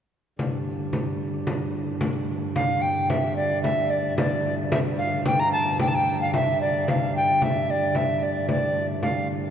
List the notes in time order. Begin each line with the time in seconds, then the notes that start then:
0.39 G2 D3, frame drum
0.66 frame drum
0.93 frame drum
1.21 frame drum
1.47 frame drum
1.74 frame drum
2.01 frame drum
2.28 frame drum
2.55 G2 D3 F5, frame drum
2.81 G5
3.09 E5, frame drum
3.36 D5
3.62 E5, frame drum
3.90 D5
4.17 D5, frame drum
4.72 E5, frame drum
4.98 F5
5.25 G5, frame drum
5.39 A#5
5.52 A5
5.79 G5, frame drum
5.87 A5
5.95 G5
6.21 F5
6.34 E5, frame drum
6.61 D5, frame drum
6.87 G2 D3 F5, frame drum
7.16 G5
7.42 E5, frame drum
7.70 D5
7.95 E5, frame drum
8.23 D5
8.49 D5, frame drum
9.02 F5, frame drum